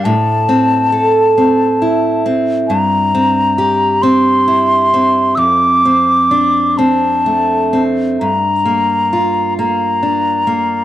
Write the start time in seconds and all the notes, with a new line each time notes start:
Already playing: G3 D4 A#4
0.04 A2 A5
0.49 C4
0.92 A4
1.38 C4
1.82 E4
2.26 C4
2.68 G2 A#5
3.15 C4
3.58 G4
4.02 C4 C6
4.48 E4
4.94 C4
5.35 F2 D6 E6
5.85 C4
6.31 D4
6.78 C4 A5
7.26 A3
7.73 C4
8.20 G2 A#5
8.65 A#3
9.13 F4
9.59 A#3 A#5
10.03 D4
10.47 A#3